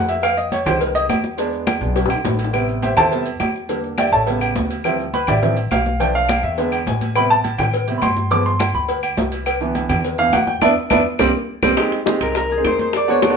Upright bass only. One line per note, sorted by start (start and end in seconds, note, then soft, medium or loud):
0.00 0.61 F2 medium
0.66 1.06 C2 loud
1.09 1.76 E2 loud
1.81 2.08 B1 loud
2.10 2.24 B1 medium
2.25 2.91 A1 loud
2.97 3.37 E2 medium
3.40 4.07 E2 medium
4.12 4.53 A1 medium
4.56 5.22 D2 medium
5.28 5.68 A1 loud
5.71 6.38 B1 medium
6.43 6.84 E2 loud
6.86 7.53 A1 medium
7.59 7.99 A2 medium
8.02 8.69 G2 medium
8.74 9.14 D2 medium
9.17 9.84 C2 medium
9.89 10.30 E2 loud
10.33 10.60 E2 medium
10.61 10.72 E2 loud
10.91 11.01 E2 loud
11.20 11.30 C2 loud
11.63 11.74 C2 loud
12.21 12.61 C2 medium
12.64 13.31 E2 medium